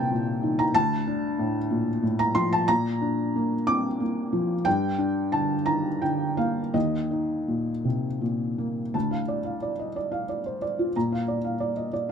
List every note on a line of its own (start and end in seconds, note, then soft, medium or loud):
0.00 0.70 D#2 medium
0.00 0.11 A#2 medium
0.00 0.11 C3 medium
0.00 0.77 A#3 medium
0.00 0.77 G5 medium
0.00 0.74 A5 medium
0.00 0.59 A#5 medium
0.11 0.62 A#2 medium
0.43 0.75 D#3 medium
0.59 0.75 A#5 medium
0.74 2.63 D2 medium
0.74 2.18 A5 loud
1.07 1.58 D4 medium
1.39 1.89 A2 medium
1.71 2.02 A#2 medium
2.03 2.55 A2 medium
2.19 2.35 A#5 loud
2.35 2.67 F3 medium
2.35 2.51 C6 loud
2.53 2.68 A5 medium
2.68 4.62 A#2 medium
2.68 3.66 A#5 loud
3.01 3.53 D4 medium
3.36 3.87 A#3 medium
3.67 4.00 C4 soft
3.67 4.66 D6 medium
4.00 4.53 A#3 medium
4.33 4.66 F3 medium
4.65 6.71 G2 medium
4.65 5.32 G5 loud
4.98 5.53 D4 medium
5.32 5.88 D3 soft
5.32 5.67 A5 medium
5.66 6.02 D#3 soft
5.66 6.02 A#5 medium
6.02 6.60 D3 soft
6.02 6.38 G5 medium
6.37 6.75 A#3 soft
6.37 6.74 F5 medium
6.74 8.90 D#2 medium
6.74 7.84 D#5 medium
7.11 7.70 D#4 soft
7.48 8.07 A#2 soft
7.85 8.22 C3 soft
8.21 8.80 A#2 soft
8.58 8.94 A#3 soft
8.94 10.91 D2 medium
8.94 9.22 A5 soft
9.11 9.38 F5 soft
9.28 9.55 D5 soft
9.45 9.72 F5 soft
9.62 9.89 D5 soft
9.79 9.96 D#5 soft
9.96 10.23 D5 soft
10.12 10.39 F5 soft
10.29 10.56 D5 soft
10.46 10.63 C5 soft
10.62 10.88 D5 soft
10.79 10.95 F4 soft
10.96 12.12 A#2 medium
10.96 11.22 A#5 medium
11.12 11.38 F5 soft
11.28 11.54 D5 soft
11.44 11.70 F5 soft
11.60 11.86 D5 soft
11.77 11.92 D#5 soft
11.93 12.12 D5 soft